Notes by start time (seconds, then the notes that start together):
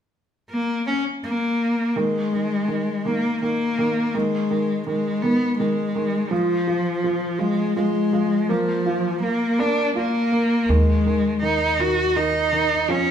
0.50 A#3
0.87 C#4
1.24 A#3
1.96 D#3 G#3
2.33 D#3
2.68 D#3
3.05 D#3 A#3
3.42 D#3 A#3
3.78 D#3
4.14 D#3 G#3
4.50 D#3
4.87 D#3 G#3
5.22 D#3 B3
5.58 D#3 G#3
5.95 D#3
6.31 F3
6.68 F3
7.04 F3
7.39 F3 G#3
7.76 F3 G#3
8.13 F3
8.49 F3 A#3
8.86 F4
9.22 A#3
9.59 A#3 D4
9.95 A#3 F4
10.32 A#3
10.69 D#2 D#3 G#3
11.06 D#3
11.42 D#3 D#4
11.79 D#3 F#4
12.16 D#3 D#4
12.53 D#3
12.88 F2 F3 C#4